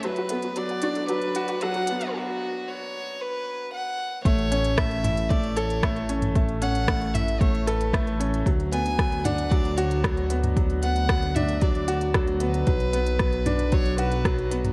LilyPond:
<<
  \new Staff \with { instrumentName = "Violin" } { \time 4/4 \key a \major \tempo 4 = 114 b'4 d''4 b'4 fis''4 | fis'4 cis''4 b'4 fis''4 | cis''4 e''4 d''8 cis''4 r8 | r8 fis''4 e''8 cis''8 b'4 r8 |
r8 gis''4 fis''8 d''8 cis''4 r8 | r8 fis''4 e''8 d''4 r8 b'8~ | b'2 cis''8 b'4 r8 | }
  \new Staff \with { instrumentName = "Synth arpeggio sound" } { \time 4/4 \key a \major fis''16 fis'16 a'16 fis'16 r16 fis''16 fis'16 a'16 fis'16 r16 fis''16 fis'16 a'16 fis'16 r16 fis''16 | r1 | r1 | r1 |
r1 | r1 | r1 | }
  \new Staff \with { instrumentName = "Grand piano" } { \time 4/4 \key a \major fis8 b8 fis8 d'8 fis8 fis'8 fis8 b8 | r1 | a8 cis'8 a8 e'8 a8 a'8 a8 cis'8 | a8 cis'8 a8 e'8 a8 a'8 a8 cis'8 |
fis8 b8 fis8 d'8 fis8 fis'8 fis8 b8 | fis8 b8 fis8 d'8 fis8 fis'8 fis8 b8 | fis8 b8 fis8 d'8 fis8 fis'8 fis8 b8 | }
  \new Staff \with { instrumentName = "Detuned saw bass" } { \clef bass \time 4/4 \key a \major d,1 | r1 | a,,1~ | a,,1 |
d,1~ | d,1 | b,,1 | }
  \new DrumStaff \with { instrumentName = "Drums" } \drummode { \time 4/4 hh16 hh16 hh16 hh16 hh16 hh16 hh16 hh16 hh16 hh16 hh16 hh16 hh16 hh16 hh16 hh16 | r4 r4 r4 r4 | <hh bd>16 hh16 hh16 hh16 <hh bd ss>16 hh16 <hh toml>16 hh16 <hh bd>16 hh16 hh16 hh16 <hh bd ss>16 hh16 hh16 <hh toml>16 | <hh bd>16 hh16 hh16 hh16 <hh bd ss>16 hh16 <hh toml>16 hh16 <hh bd>16 hh16 hh16 hh16 <hh bd ss>16 hh16 hh16 hh16 |
<hh bd>16 hh16 hh16 hh16 <hh bd ss>16 hh16 <hh toml>16 hh16 <hh bd>16 hh16 hh16 hh16 <hh bd ss>16 hh16 hh16 <hh toml>16 | <hh bd>16 hh16 hh16 hh16 <hh bd ss>16 hh16 <hh toml>16 hh16 <hh bd>16 hh16 hh16 hh16 <hh bd ss>16 hh16 hh16 hh16 | <hh bd>16 hh16 hh16 hh16 <hh bd ss>16 hh16 <hh toml>16 hh16 <hh bd>16 hh16 hh16 hh16 <hh bd ss>16 hh16 hh16 <hh toml>16 | }
>>